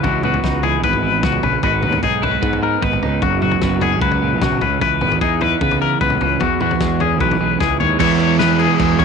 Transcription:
0.03 C#2 E3 F#4, kick, floor tom
0.23 B3 F#4, mid tom
0.34 floor tom
0.44 C#2 D#4, kick, snare
0.63 E3 G#4, floor tom
0.84 G#1 B3 B4, kick
0.93 floor tom
1.03 E3
1.23 C#2 B3 F#4, kick, snare, mid tom
1.32 mid tom
1.43 A#1 C#3 B4, floor tom, mid tom
1.63 G#1 G#2 B3 D#4 F#4 B4, kick, floor tom
1.83 D#2 B3, mid tom
1.92 floor tom
2.03 B1 D#4 G#4, kick
2.22 E4 B4, floor tom
2.31 F#4
2.42 G#2 B3, kick
2.53 floor tom
2.62 D#4 A#4
2.82 G#1 B3 B4, kick
2.93 mid tom
3.02 C#2 D#4, floor tom
3.22 F#1 F#2 F#4, kick, floor tom
3.42 F#3 F#4, mid tom
3.51 floor tom
3.62 F#1 B3, kick, snare
3.81 B3 G#4, floor tom
3.92 C#4
4.01 C#2 F#3 B4, kick
4.11 floor tom
4.22 A#2
4.41 F#1 B2 F#4, kick, snare, mid tom
4.52 mid tom
4.61 C#2 C#3 B4, floor tom, mid tom
4.81 C#2 E3 B4, kick, floor tom
5.01 G#1 B3, mid tom
5.12 floor tom
5.21 E2 D#4 G#4, kick
5.41 E3 B4, floor tom
5.61 C#3 B3, kick
5.71 floor tom
5.82 E3 A#4
6.01 C#2 B3 B4, kick
6.10 mid tom
6.21 C#2 C#3, floor tom
6.40 E2 F#4, kick, floor tom
6.61 E3 F#4, mid tom
6.71 floor tom
6.81 E2 G#3, kick, snare
7.00 C#4 G#4, floor tom
7.21 B1 E3 B4, kick
7.31 floor tom
7.40 B1 G#3
7.60 C#2 E3 G#4, kick, snare
7.80 D#2 G#3 C#5, floor tom
7.99 E2 E3 G#3 B3 E4 C#5, kick, crash
8.20 crash
8.39 B4, snare, crash
8.59 G#4, crash
8.79 E2, kick, crash
8.99 E2 C#5, kick, crash

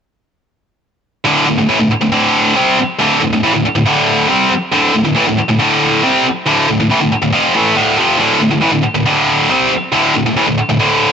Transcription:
1.25 D2 A2 D3
1.47 D2 A2
1.58 D2 A2
1.69 A2 E3
1.80 D2 A2
1.91 muted distorted electric guitar stroke
2.01 D2 A2
2.12 D2 A2 D3
2.56 C3 G3 C4
2.79 muted distorted electric guitar stroke
2.99 D2 A2 D3
3.21 D2 A2
3.32 D2 A2
3.43 A2 E3
3.54 D2 A2
3.65 muted distorted electric guitar stroke
3.75 D2 A2
3.86 D2 A2 D3
4.29 C3 G3 C4
4.51 muted distorted electric guitar stroke
4.72 D2 A2 D3
4.94 D2 A2
5.05 D2 A2
5.16 A2 E3
5.27 D2 A2
5.39 muted distorted electric guitar stroke
5.49 D2 A2
5.59 D2 A2 D3
6.03 C3 G3 C4
6.26 muted distorted electric guitar stroke
6.47 D2 A2 D3
6.68 D2 A2
6.80 D2 A2
6.91 A2 E3
7.01 D2 A2
7.12 muted distorted electric guitar stroke
7.22 D2 A2
7.32 F2 C3 F3
7.55 A2 E3 A3
7.76 D2 A2 D3
7.97 F2 C3 F3
8.19 D2 A2 D3
8.41 D2 A2
8.51 D2 A2
8.62 A2 E3
8.73 D2 A2
8.83 muted distorted electric guitar stroke
8.95 D2 A2
9.05 D2 A2 D3
9.49 C3 G3 C4
9.71 muted distorted electric guitar stroke
9.92 D2 A2 D3
10.15 D2 A2
10.26 D2 A2
10.37 A2 E3
10.47 D2 A2
10.58 muted distorted electric guitar stroke
10.69 D2 A2
10.80 D2 A2 D3

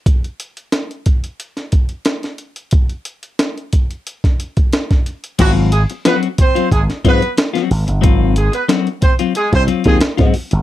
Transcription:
0.06 kick, closed hi-hat
0.24 closed hi-hat
0.40 closed hi-hat
0.57 closed hi-hat
0.72 snare, closed hi-hat
0.91 closed hi-hat
1.06 kick, closed hi-hat
1.24 closed hi-hat
1.40 closed hi-hat
1.57 snare, closed hi-hat
1.72 kick, closed hi-hat
1.89 closed hi-hat
2.05 snare, closed hi-hat
2.23 snare, closed hi-hat
2.38 closed hi-hat
2.56 closed hi-hat
2.71 kick, closed hi-hat
2.89 closed hi-hat
3.05 closed hi-hat
3.23 closed hi-hat
3.39 snare, closed hi-hat
3.58 closed hi-hat
3.73 kick, closed hi-hat
3.91 closed hi-hat
4.07 closed hi-hat
4.24 kick, snare, closed hi-hat
4.40 closed hi-hat
4.57 kick, closed hi-hat
4.73 snare, closed hi-hat
4.91 kick, snare, closed hi-hat
5.06 closed hi-hat
5.24 closed hi-hat
5.39 G#1 F3 F#3 B3 E4 F#4, kick, closed hi-hat, crash
5.52 F#3 C4 F4
5.71 G#3 G#4, closed hi-hat
5.90 muted clean electric guitar stroke, closed hi-hat
6.05 F#3 B3 C4 F#4 B4, snare, closed hi-hat
6.23 closed hi-hat
6.38 C4 C5, muted clean electric guitar stroke, kick, closed hi-hat
6.55 F#3 C4 F4, closed hi-hat
6.71 G#1 G#3 G#4, kick, closed hi-hat
6.90 muted clean electric guitar stroke, snare, closed hi-hat
7.05 G#2 F#3 B3 C4 F4 B4, kick, closed hi-hat
7.22 muted clean electric guitar stroke, closed hi-hat
7.37 muted clean electric guitar stroke, snare, closed hi-hat
7.54 F#3 C4 F#4, snare, closed hi-hat
7.70 G#1, muted clean electric guitar stroke, open hi-hat
7.87 G1, muted clean electric guitar stroke, closed hi-hat
8.01 G#1 F#3 C4 F4, kick, closed hi-hat
8.36 G#3 G#4, closed hi-hat
8.52 B3 B4, muted clean electric guitar stroke, closed hi-hat
8.69 F#3 C4 F#4, snare, closed hi-hat
8.87 closed hi-hat
9.02 C4 C5, muted clean electric guitar stroke, kick, closed hi-hat
9.19 F#3 C4 F4, closed hi-hat
9.35 G#3 G#4, muted clean electric guitar stroke, closed hi-hat
9.52 C2 C4 C5, muted clean electric guitar stroke, kick, snare, closed hi-hat
9.67 F#3 C4 F4, closed hi-hat
9.84 D#2 F#3 G#3 C4 F4 G#4, kick, closed hi-hat
10.01 snare, closed hi-hat
10.17 G#2 F#3 C4 F#4, kick, snare, closed hi-hat
10.34 muted clean electric guitar stroke, open hi-hat
10.51 G1, muted clean electric guitar stroke, closed hi-hat

